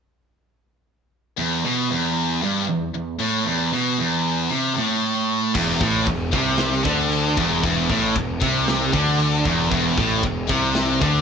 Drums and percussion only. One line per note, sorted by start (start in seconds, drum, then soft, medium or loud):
5.55 kick loud
5.55 crash loud
5.55 crash medium
5.81 kick loud
6.06 kick medium
6.06 crash medium
6.33 kick loud
6.58 snare loud
6.58 crash medium
6.85 kick loud
7.12 crash medium
7.37 kick medium
7.64 kick loud
7.64 crash medium
7.90 kick loud
8.16 kick medium
8.16 crash medium
8.42 kick loud
8.68 snare loud
8.68 crash medium
8.93 kick loud
9.20 crash medium
9.45 kick medium
9.72 kick loud
9.72 crash medium
9.98 kick loud
10.23 kick medium
10.23 crash medium
10.49 kick loud
10.75 snare loud
10.75 crash medium
11.02 kick loud